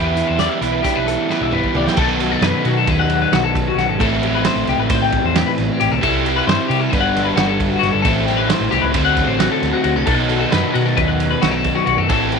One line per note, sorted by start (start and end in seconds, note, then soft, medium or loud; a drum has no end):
0.00 0.21 E2 medium
0.00 1.28 E2 medium
0.00 0.13 D3 soft
0.00 0.37 E3 medium
0.00 0.17 B3 medium
0.00 0.15 E4 medium
0.00 0.60 E4 medium
0.00 0.14 G4 medium
0.05 0.28 B4 medium
0.14 1.05 E3 medium
0.14 0.38 E4 medium
0.14 0.39 G4 medium
0.14 closed hi-hat soft
0.18 0.38 B3 soft
0.28 0.47 E2 medium
0.28 0.39 C5 medium
0.38 0.83 E3 medium
0.38 1.97 G3 medium
0.38 0.62 B3 medium
0.38 0.62 E4 medium
0.38 0.60 G4 medium
0.38 0.49 D5 medium
0.38 snare medium
0.38 closed hi-hat medium
0.49 0.72 E5 medium
0.61 0.80 B1 medium
0.61 0.83 B3 medium
0.61 1.94 E4 soft
0.61 0.83 E4 medium
0.61 0.84 G4 medium
0.61 closed hi-hat medium
0.72 0.82 B4 medium
0.82 1.28 E3 medium
0.82 1.28 B3 medium
0.82 1.94 D4 medium
0.82 1.29 E4 medium
0.82 0.96 G4 medium
0.82 1.30 G4 medium
0.82 kick medium
0.82 snare soft
0.82 closed hi-hat medium
0.96 1.15 B1 medium
0.96 1.07 B4 medium
1.07 1.94 E3 medium
1.07 1.31 A4 medium
1.07 closed hi-hat medium
1.29 1.52 F#2 medium
1.29 1.73 E3 medium
1.29 1.53 B3 medium
1.29 1.52 E4 medium
1.29 1.50 G4 medium
1.29 1.41 B4 medium
1.29 snare soft
1.41 1.59 B1 medium
1.41 1.53 E5 medium
1.41 high tom soft
1.50 1.73 G2 medium
1.50 1.74 E4 medium
1.50 1.75 G4 medium
1.50 1.75 B4 medium
1.50 mid tom medium
1.54 1.74 B3 soft
1.64 kick medium
1.74 1.84 C2 medium
1.74 1.97 A2 medium
1.74 1.95 E3 medium
1.74 1.96 B3 medium
1.74 1.96 E4 medium
1.74 1.96 G4 medium
1.74 1.87 D5 medium
1.74 floor tom medium
1.87 1.98 G5 medium
1.87 snare medium
1.96 2.34 B1 medium
1.96 3.98 B2 loud
1.96 3.98 D#3 medium
1.96 3.99 F#3 medium
1.96 3.99 B3 loud
1.96 3.99 D#4 medium
1.96 2.20 A4 medium
1.96 4.00 A4 loud
1.96 kick loud
1.96 crash loud
2.20 2.32 F#4 medium
2.20 snare soft
2.20 ride medium
2.32 2.42 A4 medium
2.42 2.51 F#2 loud
2.42 2.65 B4 medium
2.42 snare loud
2.42 ride loud
2.65 2.83 B2 medium
2.65 2.77 F#4 medium
2.65 ride medium
2.77 2.88 A4 medium
2.87 3.24 D#2 medium
2.87 2.99 B4 medium
2.87 kick loud
2.87 ride loud
2.99 3.21 F#5 medium
3.10 ride medium
3.22 3.33 B4 medium
3.32 3.69 B1 medium
3.32 3.44 F#4 medium
3.32 snare loud
3.32 ride medium
3.45 3.67 A4 medium
3.55 kick medium
3.55 ride medium
3.68 3.77 F#4 medium
3.75 3.86 B1 medium
3.75 3.89 F#4 medium
3.75 snare soft
3.75 ride medium
3.88 3.98 G#1 medium
3.88 4.00 A4 medium
3.99 4.46 A1 loud
3.99 6.01 A2 medium
3.99 6.01 E3 loud
3.99 6.01 A3 loud
3.99 6.01 C4 loud
3.99 6.02 E4 loud
3.99 4.24 A4 medium
3.99 kick loud
3.99 ride medium
4.23 4.35 G4 medium
4.23 ride medium
4.35 4.45 B4 medium
4.45 4.68 C5 medium
4.45 snare loud
4.45 ride loud
4.56 4.65 A1 medium
4.67 4.77 C2 medium
4.67 4.80 G4 medium
4.67 snare soft
4.67 ride medium
4.78 4.88 A1 medium
4.78 4.90 B4 medium
4.90 5.18 A2 loud
4.90 5.02 C5 medium
4.90 kick loud
4.90 ride loud
5.02 5.24 G5 medium
5.12 kick medium
5.12 ride medium
5.24 5.43 E2 medium
5.24 5.36 C5 medium
5.36 5.47 G4 medium
5.36 snare loud
5.36 ride loud
5.47 5.70 B4 medium
5.58 5.67 A1 loud
5.58 snare soft
5.58 ride medium
5.70 5.79 G4 medium
5.80 5.90 A1 medium
5.80 5.92 G4 medium
5.80 ride medium
5.92 6.01 B1 medium
5.92 6.02 A4 medium
6.01 6.40 C2 loud
6.01 6.90 C3 medium
6.01 6.91 G3 loud
6.01 6.91 C4 loud
6.01 6.91 E4 loud
6.01 6.26 A4 medium
6.01 kick loud
6.01 ride loud
6.26 6.37 G4 medium
6.26 ride medium
6.36 6.47 B4 medium
6.47 6.57 G2 loud
6.47 6.70 C5 medium
6.47 snare loud
6.47 ride loud
6.68 6.88 C3 loud
6.68 6.80 G4 medium
6.68 ride medium
6.80 6.90 A4 medium
6.90 7.30 G1 loud
6.90 8.03 G2 loud
6.90 8.04 D3 medium
6.90 8.04 G3 loud
6.90 7.02 B4 medium
6.90 kick loud
6.90 snare soft
6.90 ride loud
6.94 8.04 B3 medium
6.94 8.04 D4 loud
7.01 7.24 F#5 medium
7.16 snare soft
7.16 ride medium
7.24 7.37 B4 medium
7.36 7.74 G1 medium
7.36 7.47 F#4 medium
7.36 snare loud
7.36 ride loud
7.47 7.69 A4 medium
7.60 kick medium
7.60 ride medium
7.69 7.78 F#4 medium
7.79 7.92 G1 medium
7.79 7.91 F#4 medium
7.79 ride medium
7.83 snare soft
7.92 8.03 G1 medium
7.92 8.01 A4 medium
8.02 8.51 A1 loud
8.02 8.93 A2 loud
8.02 8.93 E3 medium
8.02 8.94 A3 loud
8.02 8.94 C4 loud
8.02 8.26 A4 medium
8.02 kick loud
8.02 ride medium
8.07 8.94 E4 loud
8.26 8.38 G4 medium
8.26 snare soft
8.26 ride medium
8.37 8.49 B4 medium
8.49 8.72 C5 medium
8.49 snare loud
8.49 ride loud
8.60 8.70 A1 medium
8.71 8.82 C2 medium
8.71 8.83 G4 medium
8.71 snare soft
8.71 ride medium
8.82 8.93 C#2 medium
8.82 8.93 B4 medium
8.93 9.22 D2 loud
8.93 10.05 D3 loud
8.93 10.07 A3 loud
8.93 10.06 C4 loud
8.93 10.06 F#4 loud
8.93 9.04 C5 medium
8.93 kick loud
8.93 ride loud
9.05 9.28 F#5 medium
9.16 kick medium
9.16 snare soft
9.16 ride medium
9.28 9.46 A1 medium
9.28 9.39 C5 medium
9.39 9.51 F#4 medium
9.39 snare loud
9.39 ride loud
9.52 9.72 A4 medium
9.62 9.71 D2 loud
9.62 snare soft
9.62 ride medium
9.73 9.83 F#4 medium
9.84 9.93 D2 medium
9.84 9.96 F#4 medium
9.84 ride medium
9.96 10.05 C2 medium
9.96 10.05 A4 medium
10.06 10.44 B1 loud
10.06 12.07 B2 medium
10.06 12.08 D#3 loud
10.06 12.08 F#3 medium
10.06 12.08 B3 loud
10.06 12.09 D#4 loud
10.06 10.29 A4 medium
10.06 12.09 A4 loud
10.06 kick loud
10.06 crash medium
10.29 10.41 F#4 medium
10.29 ride medium
10.41 10.51 A4 medium
10.51 10.62 F#2 loud
10.51 10.74 B4 medium
10.51 snare loud
10.51 ride loud
10.74 10.93 B2 medium
10.74 10.86 F#4 medium
10.74 ride medium
10.86 10.97 A4 medium
10.97 11.34 D#2 medium
10.97 11.08 B4 medium
10.97 kick loud
10.97 ride loud
11.08 11.30 F#5 medium
11.20 ride medium
11.31 11.42 B4 medium
11.42 11.79 B1 medium
11.42 11.52 F#4 medium
11.42 snare loud
11.42 ride loud
11.52 11.75 A4 medium
11.64 kick medium
11.64 ride medium
11.75 11.85 F#4 medium
11.86 11.96 B1 medium
11.86 11.98 F#4 medium
11.86 ride medium
11.97 12.07 F#2 medium
11.97 12.08 A4 medium
12.08 12.39 A1 loud
12.08 12.39 A2 loud
12.08 12.39 E3 loud
12.08 12.39 A3 loud
12.08 12.39 C4 loud
12.08 12.39 E4 loud
12.08 12.32 A4 medium
12.08 kick loud
12.08 ride medium
12.32 12.39 G4 medium
12.32 ride medium